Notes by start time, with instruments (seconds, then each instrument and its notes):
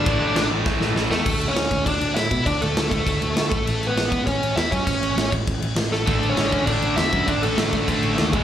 Already playing: lead electric guitar D4 D5
0.05 picked electric bass A1, distorted electric guitar A2 E3 A3, kick, crash
0.19 picked electric bass A1, distorted electric guitar A2 E3 A3
0.34 picked electric bass A1, distorted electric guitar A2 E3 A3, snare, crash
0.50 picked electric bass A1, distorted electric guitar A2 E3 A3
0.65 picked electric bass A1, distorted electric guitar A2 E3 A3, kick, snare
0.80 picked electric bass A1, distorted electric guitar A2 E3 A3, snare
0.95 picked electric bass A1, distorted electric guitar A2 E3 A3, snare
1.10 picked electric bass E2, distorted electric guitar A2 E3 A3, lead electric guitar A3 A4, snare
1.26 picked electric bass D2, kick, crash
1.41 crash
1.48 lead electric guitar C#4 C#5
1.55 picked electric bass D2, snare, crash
1.71 picked electric bass D2, kick, crash
1.86 picked electric bass D2, lead electric guitar D4 D5, kick, crash
2.01 picked electric bass D2, crash
2.14 picked electric bass A2, lead electric guitar E4 E5, snare, crash
2.31 picked electric bass B2, kick, crash
2.46 picked electric bass D2, lead electric guitar D4 D5, kick, crash
2.61 picked electric bass D2, lead electric guitar A3 A4, crash
2.77 picked electric bass D2, snare, crash
2.89 picked electric bass D2, lead electric guitar A3 A4, kick, crash
3.07 picked electric bass D2, kick, crash
3.22 picked electric bass D2, crash
3.36 picked electric bass D2, snare, crash
3.50 picked electric bass A1, lead electric guitar A3 A4, kick, crash
3.67 picked electric bass A1, crash
3.83 crash
3.87 lead electric guitar B3 B4
3.96 picked electric bass A1, snare, crash
4.12 picked electric bass A1, kick, crash
4.26 picked electric bass A1, lead electric guitar C#4 C#5, kick, crash
4.42 picked electric bass A1, crash
4.56 picked electric bass E2, lead electric guitar E4 E5, snare, crash
4.71 picked electric bass F#2, lead electric guitar C#4 C#5, kick, crash
4.87 picked electric bass A1, kick, crash
5.01 picked electric bass A1, crash
5.16 picked electric bass A1, snare, crash
5.32 picked electric bass A1, kick, crash
5.47 picked electric bass A1, kick, crash
5.62 picked electric bass A1, crash
5.76 picked electric bass A1, snare, crash
5.91 picked electric bass A1, lead electric guitar A3 A4, snare
6.07 picked electric bass A1, distorted electric guitar D3 A3 D4, kick, crash
6.23 crash
6.30 lead electric guitar C#4 C#5
6.37 picked electric bass A1, snare, crash
6.52 picked electric bass A1, kick, crash
6.66 picked electric bass A1, overdriven electric guitar D3 A3, lead electric guitar D4 D5, kick, crash
6.70 overdriven electric guitar D4
6.82 picked electric bass A1, crash
6.96 picked electric bass E2, lead electric guitar E4 E5, snare, crash
7.13 picked electric bass F#2, kick, crash
7.26 picked electric bass A1, distorted electric guitar D3 A3 D4, lead electric guitar D4 D5, kick, crash
7.43 picked electric bass A1, lead electric guitar A3 A4, crash
7.58 picked electric bass A1, snare, crash
7.71 picked electric bass A1, lead electric guitar A3 A4, kick, crash
7.87 picked electric bass A1, overdriven electric guitar D3 A3 D4, kick, crash
8.03 picked electric bass A1, crash
8.18 picked electric bass D#2, snare, crash
8.32 picked electric bass E1, distorted electric guitar E2 B2 E3, lead electric guitar G#3 G#4, kick, crash